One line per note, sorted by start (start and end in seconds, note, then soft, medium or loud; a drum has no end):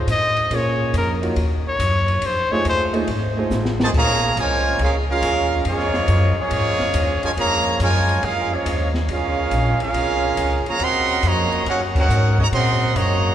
0.07 0.49 A2 loud
0.07 kick soft
0.07 hi-hat pedal medium
0.07 ride medium
0.12 0.57 D#5 loud
0.37 ride medium
0.50 0.92 A#2 medium
0.50 1.17 A#3 medium
0.50 1.17 C#4 medium
0.50 1.17 F4 medium
0.50 1.18 G#4 medium
0.50 1.18 C#5 medium
0.50 kick soft
0.50 ride medium
0.55 0.96 C#5 medium
0.93 1.35 F2 loud
0.93 kick soft
0.93 hi-hat pedal medium
0.93 ride medium
0.98 1.14 A#4 medium
1.21 1.35 A#3 medium
1.21 1.35 D#4 medium
1.21 1.35 F4 medium
1.21 1.36 F#4 medium
1.21 1.36 C#5 medium
1.21 ride medium
1.36 1.78 D#2 medium
1.36 kick soft
1.36 ride medium
1.68 2.28 C#5 loud
1.79 2.21 F#2 loud
1.79 kick soft
1.79 hi-hat pedal medium
1.79 ride medium
2.08 ride medium
2.22 2.49 F2 medium
2.22 kick soft
2.22 ride medium
2.26 2.53 C5 loud
2.50 2.91 A3 medium
2.50 2.92 D#4 medium
2.50 2.92 F4 medium
2.50 2.92 G#4 medium
2.50 2.92 C5 medium
2.50 2.66 C#5 loud
2.50 muted upright bass stroke soft
2.64 3.07 D#2 loud
2.64 kick soft
2.64 hi-hat pedal medium
2.64 ride medium
2.69 2.85 C5 loud
2.93 3.06 A3 medium
2.93 3.07 D#4 medium
2.93 3.07 F4 medium
2.93 3.07 G#4 medium
2.93 3.08 C5 medium
2.93 ride medium
3.08 3.50 G#1 medium
3.08 kick soft
3.08 ride medium
3.37 3.91 A3 medium
3.37 3.91 D#4 medium
3.37 3.92 F4 medium
3.37 3.92 G#4 medium
3.37 3.92 C5 medium
3.50 3.92 A1 loud
3.50 snare medium
3.50 hi-hat pedal medium
3.65 snare medium
3.80 3.88 C3 loud
3.80 3.88 D#3 medium
3.80 3.89 A3 medium
3.80 3.89 G#4 medium
3.80 3.89 C5 medium
3.80 3.89 A5 loud
3.80 snare loud
3.84 3.89 D#4 medium
3.93 4.35 A#1 medium
3.93 4.35 C#3 loud
3.93 4.35 F3 medium
3.93 4.35 A#3 medium
3.93 4.35 G#4 loud
3.93 4.36 C#5 medium
3.93 4.35 F5 loud
3.93 4.35 A#5 loud
3.93 kick medium
3.93 crash medium
4.36 4.78 C2 medium
4.36 4.81 F3 medium
4.36 4.81 G#3 medium
4.36 4.81 C#4 medium
4.36 kick soft
4.36 hi-hat pedal medium
4.36 ride medium
4.40 4.82 F4 loud
4.40 4.81 A#4 medium
4.40 4.82 C#5 loud
4.40 4.82 G#5 loud
4.79 5.21 C#2 medium
4.79 4.95 G#3 medium
4.79 4.94 C#4 medium
4.79 4.95 C#4 medium
4.79 4.95 F4 medium
4.79 4.95 G#4 medium
4.79 4.94 A#4 medium
4.79 4.95 F5 medium
4.79 kick soft
4.79 ride medium
5.11 5.63 G#3 loud
5.11 5.63 C#4 medium
5.11 5.63 F4 loud
5.11 5.63 G#4 medium
5.11 5.63 A#4 loud
5.11 5.63 F5 loud
5.22 5.64 D#2 loud
5.22 kick soft
5.22 hi-hat pedal medium
5.22 ride medium
5.65 6.07 F2 medium
5.65 6.34 F3 medium
5.65 6.34 G#3 medium
5.65 6.35 A#3 medium
5.65 6.34 C#4 medium
5.65 6.34 F4 medium
5.65 6.34 G#4 medium
5.65 6.34 C#5 loud
5.65 kick soft
5.65 ride medium
5.79 snare soft
5.94 snare medium
6.08 6.35 F#2 loud
6.08 kick soft
6.08 hi-hat pedal medium
6.08 ride medium
6.37 7.19 F3 medium
6.37 7.19 G#3 medium
6.37 7.20 A#3 medium
6.37 7.19 C#4 medium
6.37 7.20 F4 medium
6.37 7.20 G#4 medium
6.37 7.20 C#5 loud
6.37 muted upright bass stroke soft
6.51 6.66 G#2 medium
6.51 kick soft
6.51 ride medium
6.66 6.80 F2 medium
6.80 6.93 C#2 medium
6.80 snare soft
6.94 7.21 D#2 loud
6.94 kick soft
6.94 hi-hat pedal medium
6.94 ride medium
7.23 7.30 C#3 medium
7.23 7.30 F3 medium
7.23 7.30 G#3 medium
7.23 7.31 F4 medium
7.23 7.31 A#4 medium
7.23 7.30 C#5 medium
7.23 7.30 G#5 loud
7.23 muted upright bass stroke soft
7.23 ride medium
7.37 7.79 F2 medium
7.37 7.77 C#3 medium
7.37 7.77 F3 medium
7.37 7.77 A#3 loud
7.37 7.78 G#4 loud
7.37 7.78 C#5 loud
7.37 7.78 F5 medium
7.37 7.78 A#5 loud
7.37 kick soft
7.37 ride medium
7.80 8.21 F#2 loud
7.80 8.20 C#3 medium
7.80 8.20 F3 medium
7.80 8.20 G#3 medium
7.80 8.21 F4 loud
7.80 8.21 A#4 medium
7.80 8.21 C#5 medium
7.80 8.21 G#5 loud
7.80 kick soft
7.80 hi-hat pedal medium
7.80 ride medium
8.09 ride medium
8.22 8.64 F2 medium
8.22 8.52 G#3 medium
8.22 8.52 C#4 medium
8.22 8.52 F4 medium
8.22 8.52 G#4 medium
8.22 8.53 A#4 medium
8.22 8.53 F5 loud
8.22 kick soft
8.22 ride medium
8.53 8.88 F3 medium
8.53 8.88 G#3 medium
8.53 8.88 A#3 medium
8.53 8.88 C#4 medium
8.53 8.88 F4 medium
8.53 8.88 G#4 medium
8.53 8.88 C#5 medium
8.66 9.07 D#2 loud
8.66 kick soft
8.66 hi-hat pedal medium
8.66 ride medium
8.94 snare medium
9.08 9.50 C#2 medium
9.08 9.77 G#3 medium
9.08 9.77 C#4 medium
9.08 9.77 F4 medium
9.08 kick soft
9.08 ride medium
9.13 9.79 C#4 medium
9.13 9.79 G#4 medium
9.13 9.79 A#4 medium
9.13 9.79 F5 loud
9.51 9.78 A#1 medium
9.51 kick soft
9.51 hi-hat pedal soft
9.51 ride medium
9.80 10.63 G#3 medium
9.80 10.63 C#4 medium
9.80 10.64 C#4 medium
9.80 10.63 F4 medium
9.80 10.64 G#4 medium
9.80 10.63 A#4 medium
9.80 10.63 F5 loud
9.80 muted upright bass stroke soft
9.80 ride medium
9.94 10.36 C2 medium
9.94 kick soft
9.94 ride medium
10.37 10.64 C#2 loud
10.37 kick soft
10.37 hi-hat pedal medium
10.37 ride medium
10.66 10.79 C#3 medium
10.66 10.81 F3 medium
10.66 10.81 A#3 medium
10.66 10.82 G#4 medium
10.66 10.81 C#5 medium
10.66 10.81 F5 medium
10.66 10.82 A#5 loud
10.66 muted upright bass stroke soft
10.66 ride medium
10.80 11.22 D#2 medium
10.80 11.23 C#3 medium
10.80 11.22 F#3 loud
10.80 11.23 C4 medium
10.80 11.25 A#4 loud
10.80 11.25 D#5 medium
10.80 11.25 F#5 loud
10.80 11.25 C6 loud
10.80 kick soft
10.80 ride medium
11.23 11.50 F2 medium
11.23 11.67 C#3 medium
11.23 11.66 F#3 medium
11.23 11.66 A#3 medium
11.23 11.67 C#5 loud
11.23 11.68 D#5 medium
11.23 11.68 A#5 loud
11.23 kick soft
11.23 hi-hat pedal medium
11.23 ride medium
11.27 11.68 F#4 loud
11.52 muted upright bass stroke soft
11.52 ride medium
11.66 12.08 F#2 medium
11.66 11.80 A#3 medium
11.66 11.80 C#4 medium
11.66 11.81 D#4 medium
11.66 11.80 F#4 medium
11.66 11.81 A#4 medium
11.66 11.81 C#5 medium
11.66 11.81 F#5 medium
11.66 kick soft
11.66 ride medium
11.95 12.35 A#3 medium
11.95 12.35 C#4 medium
11.95 12.37 D#4 medium
11.95 12.35 F#4 medium
11.95 12.37 A#4 medium
11.95 12.37 F#5 loud
11.95 kick loud
11.95 crash medium
11.99 12.38 C#5 medium
12.08 12.51 G#2 loud
12.08 hi-hat pedal medium
12.37 12.44 C#3 medium
12.37 12.44 F#3 medium
12.37 12.44 A#3 medium
12.37 12.46 F#4 medium
12.37 12.46 C#5 medium
12.37 12.46 D#5 medium
12.37 12.47 A#5 loud
12.37 kick medium
12.52 12.94 A#2 medium
12.52 12.93 C#3 loud
12.52 12.93 F#3 medium
12.52 12.93 C4 loud
12.52 12.93 A#4 loud
12.52 12.93 D#5 loud
12.52 12.93 F#5 loud
12.52 12.93 C6 loud
12.52 kick soft
12.52 ride medium
12.95 13.35 F#2 loud
12.95 13.35 C#3 medium
12.95 13.35 F#3 medium
12.95 13.35 A#3 medium
12.95 13.35 F#4 medium
12.95 13.35 C#5 loud
12.95 13.35 D#5 medium
12.95 13.35 A#5 loud
12.95 kick soft
12.95 hi-hat pedal medium
12.95 ride medium